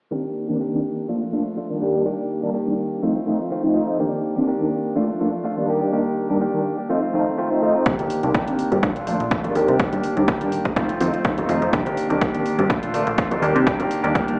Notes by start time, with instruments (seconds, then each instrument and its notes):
0.11 clean electric guitar D#3 A#3 D4 G4, analog polysynth D#3 A#3 C4 D4
0.48 analog polysynth D#3 A#3 C4 D4, clean electric guitar A#3 D4 G4
0.60 clean electric guitar D#3 A#3 D4 G4
0.73 analog polysynth D#3 A#3 C4 D4
1.08 clean electric guitar F3 A3 D4 F4, analog polysynth F3 A3 A#3 D4
1.21 clean electric guitar A3 D4 F4
1.32 clean electric guitar F3 A3 D4 F4, analog polysynth F3 A3 A#3 D4
1.57 clean electric guitar F3 A3 D4 F4
1.70 analog polysynth D#3 G3 A#3 D4, clean electric guitar A3 D4 F4
1.81 clean electric guitar D#3 A#3 D4 G4
1.94 clean electric guitar A#3 D4 G4
2.05 analog polysynth D#3 G3 A#3 D4, clean electric guitar D#3 A#3 D4 G4
2.42 analog polysynth D#3 G3 A#3 D4, clean electric guitar A#3 D4 G4
2.53 clean electric guitar D#3 A#3 D4 G4
2.66 analog polysynth D#3 G3 A#3 D4
3.02 clean electric guitar D#3 A3 C4 F4, analog polysynth F3 A3 C4 D#4
3.15 clean electric guitar A3 C4 F4
3.26 clean electric guitar D#3 A3 C4 F4, analog polysynth F3 A3 C4 D#4
3.39 clean electric guitar A3 C4 F4
3.51 clean electric guitar D#3 A3 C4 F4
3.63 analog polysynth F3 A3 C4 D#4
3.75 clean electric guitar D#3 A3 C4 F4
3.87 clean electric guitar A3 C4 F4
3.99 clean electric guitar D#3 A#3 D4 G4, analog polysynth D#3 A#3 C4 D4
4.36 analog polysynth D#3 A#3 C4 D4, clean electric guitar A#3 D4 G4
4.47 clean electric guitar D#3 A#3 D4 G4
4.60 analog polysynth D#3 A#3 C4 D4
4.95 analog polysynth F3 A3 A#3 D4, clean electric guitar F3 A3 D4 F4
5.08 clean electric guitar A3 D4 F4
5.19 clean electric guitar F3 A3 D4 F4, analog polysynth F3 A3 A#3 D4
5.32 clean electric guitar A3 D4 F4
5.44 clean electric guitar F3 A3 D4 F4
5.57 analog polysynth D#3 G3 A#3 D4, clean electric guitar A3 D4 F4
5.68 clean electric guitar D#3 A#3 D4 G4
5.81 clean electric guitar A#3 D4 G4
5.92 analog polysynth D#3 G3 A#3 D4, clean electric guitar D#3 A#3 D4 G4
6.29 analog polysynth D#3 G3 A#3 D4, clean electric guitar A#3 D4 G4
6.41 clean electric guitar D#3 A#3 D4 G4
6.53 analog polysynth D#3 G3 A#3 D4
6.78 clean electric guitar A#3 D4 G4
6.89 clean electric guitar D#3 A3 C4 F4, analog polysynth F3 A3 C4 D#4
7.02 clean electric guitar A3 C4 F4
7.13 clean electric guitar D#3 A3 C4 F4, analog polysynth F3 A3 C4 D#4
7.38 clean electric guitar D#3 A3 C4 F4
7.50 analog polysynth F3 A3 C4 D#4, clean electric guitar A3 C4 F4
7.61 clean electric guitar D#3 A3 C4 F4
7.75 clean electric guitar A3 C4 F4
7.86 analog synth bass C2, analog polysynth D#3 A#3, clean electric guitar D#3 A#3 D4 G4, kick, closed hi-hat
7.99 closed hi-hat, tambourine, high conga
8.10 open hi-hat, tambourine
8.23 analog synth bass C2, analog polysynth D#3 A#3 C4 D4, clean electric guitar A#3 D4 G4, closed hi-hat, tambourine
8.34 clean electric guitar D#3 A#3 D4 G4, kick, closed hi-hat, tambourine, high conga
8.47 analog polysynth D#3 A#3 C4 D4, closed hi-hat
8.59 open hi-hat, tambourine
8.71 analog synth bass G2, clean electric guitar A#3 D4 G4, closed hi-hat, tambourine, high conga
8.82 analog synth bass A#1, analog polysynth F3 A3 A#3 D4, clean electric guitar F3 A3 D4 F4, kick, closed hi-hat, tambourine
8.96 clean electric guitar A3 D4 F4, closed hi-hat, tambourine
9.06 analog polysynth F3 A3 A#3 D4, clean electric guitar F3 A3 D4 F4, open hi-hat, tambourine, high conga
9.20 analog synth bass A#1, closed hi-hat, tambourine
9.31 clean electric guitar F3 A3 D4 F4, kick, closed hi-hat
9.44 analog polysynth D#3 G3 A#3 D4, clean electric guitar A3 D4 F4, closed hi-hat, tambourine, low conga
9.55 analog synth bass D#2, clean electric guitar D#3 A#3 D4 G4, open hi-hat, tambourine, high conga
9.68 analog synth bass C3, clean electric guitar A#3 D4 G4, closed hi-hat, tambourine
9.79 clean electric guitar D#3 A#3 D4 G4, analog polysynth D#3 G3 D4, kick, closed hi-hat
9.93 analog synth bass G2, closed hi-hat, tambourine, high conga
10.04 open hi-hat, tambourine
10.16 analog synth bass D#2, analog polysynth D#3 G3 A#3 D4, clean electric guitar A#3 D4 G4, closed hi-hat
10.28 clean electric guitar D#3 A#3 D4 G4, kick, closed hi-hat, tambourine, high conga
10.41 analog polysynth D#3 G3 A#3 D4, closed hi-hat, tambourine
10.52 analog synth bass A#1, open hi-hat, tambourine
10.65 analog synth bass A#1, kick, closed hi-hat, tambourine, high conga
10.76 clean electric guitar D#3 A3 C4 F4, analog polysynth F3 A3 C4 D#4, kick, closed hi-hat, tambourine
10.89 clean electric guitar A3 C4 F4, closed hi-hat
11.00 analog synth bass F2, clean electric guitar D#3 A3 C4 F4, analog polysynth F3 A3 C4 D#4, open hi-hat, tambourine, high conga
11.13 clean electric guitar A3 C4 F4, closed hi-hat, tambourine
11.24 analog synth bass D#2, clean electric guitar D#3 A3 C4 F4, kick, closed hi-hat, tambourine
11.37 analog polysynth F3 A3 C4 D#4, clean electric guitar A3 C4 F4, closed hi-hat, tambourine, low conga
11.48 analog synth bass F2, clean electric guitar D#3 A3 C4 F4, open hi-hat, tambourine, high conga
11.61 analog synth bass F2, clean electric guitar A3 C4 F4, closed hi-hat, tambourine
11.72 analog synth bass C2, clean electric guitar D#3 A#3 D4 G4, analog polysynth D#3 A#3 C4 D4, kick, closed hi-hat
11.86 closed hi-hat, tambourine, high conga
11.97 open hi-hat, tambourine
12.10 analog synth bass C2, analog polysynth D#3 A#3 C4 D4, clean electric guitar A#3 D4 G4, closed hi-hat, tambourine
12.21 clean electric guitar D#3 A#3 D4 G4, kick, closed hi-hat, tambourine, high conga
12.34 analog polysynth D#3 A#3 C4 D4, closed hi-hat, tambourine
12.46 open hi-hat, tambourine
12.58 analog synth bass G2, clean electric guitar A#3 D4 G4, closed hi-hat, tambourine, high conga
12.69 analog synth bass A#1, clean electric guitar F3 A3 D4 F4, analog polysynth F3 A3 A#3 D4, kick, closed hi-hat
12.82 clean electric guitar A3 D4 F4, closed hi-hat, tambourine
12.93 clean electric guitar F3 A3 D4 F4, analog polysynth F3 A3 A#3 D4, open hi-hat, tambourine, high conga
13.07 analog synth bass A#1, closed hi-hat, tambourine
13.17 clean electric guitar F3 A3 D4 F4, kick, closed hi-hat, tambourine
13.30 analog polysynth D#3 G3 A#3 D4, clean electric guitar A3 D4 F4, closed hi-hat, tambourine, low conga
13.41 analog synth bass D#2, clean electric guitar D#3 A#3 D4 G4, open hi-hat, tambourine, high conga
13.55 analog synth bass C3, clean electric guitar A#3 D4 G4, closed hi-hat, tambourine
13.66 clean electric guitar D#3 A#3 D4 G4, analog polysynth D#3 G3 A#3, kick, closed hi-hat, tambourine
13.79 analog synth bass G2, closed hi-hat, tambourine, high conga
13.90 open hi-hat, tambourine
14.03 analog synth bass D#2, analog polysynth D#3 G3 A#3 D4, clean electric guitar A#3 D4 G4, closed hi-hat, tambourine
14.14 clean electric guitar D#3 A#3 D4 G4, kick, closed hi-hat, tambourine, high conga
14.28 analog polysynth D#3 G3 A#3 D4, closed hi-hat, tambourine